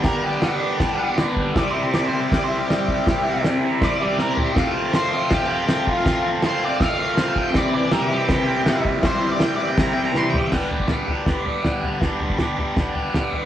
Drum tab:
CC |x---x---x---x---|x---x---x---x---|x---x---x-------|x---x---x---x---|
SD |o---o---o---o---|o---o---o---o---|o---o---o---o---|o---o---o---o---|
FT |----------------|----------------|--------------o-|----------------|
BD |o-------o-----o-|o-------o-----o-|o-------o-------|o-------o-----o-|

CC |x---x---x---x---|x---x---x---x---|x---x---x-------|x---------------|
SD |o---o---o---o---|o---o---o---o---|o---o---o---o---|o---o---o---o---|
FT |----------------|----------------|--------------o-|o-o-o-o-o-o-o-o-|
BD |o-------o-----o-|o-------o-----o-|o-------o-------|o--o----o-------|

CC |----------------|
SD |o---o---o---o---|
FT |o-o-o-o-o-o-o-o-|
BD |o--o----o-------|